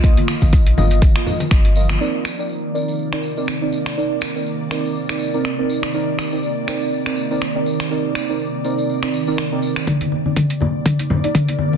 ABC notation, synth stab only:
X:1
M:4/4
L:1/16
Q:"Swing 16ths" 1/4=122
K:Cm
V:1 name="Synth stab"
[B,Fe]3 [B,Fe]3 [B,Fe]3 [B,Fe]2 z [B,Fe]2 [B,Fe]2 | [CEBd]3 [CEBd]3 [CEBd]3 [CEBd]2 [CEBd] z [CEBd]3 | [CEBd]3 [CEBd]3 [CEBd]3 [CEBd]2 [CEBd] z [CEBd]3 | [CEBd]3 [CEBd]3 [CEBd]3 [CEBd]2 [CEBd] z [CEBd]3 |
[CEBd]3 [CEBd]3 [CEBd]3 [CEBd]2 [CEBd] z [CEBd]3 | [B,Ed]3 [B,Ed]3 [B,Ed]3 [B,Ed]2 [B,Ed] z [B,Ed]3 |]